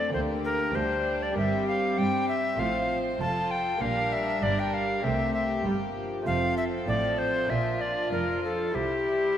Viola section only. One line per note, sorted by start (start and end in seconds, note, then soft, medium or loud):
0.00 0.11 A3 soft
0.12 0.73 A3 soft
0.74 2.58 G3 medium
2.58 3.19 F3 soft
3.20 3.80 F3 soft
3.81 5.02 G3 medium
5.03 5.65 A3 medium
5.65 5.73 G3 medium
5.95 8.08 F3 medium
8.12 8.74 F3 soft
8.74 9.38 G3 medium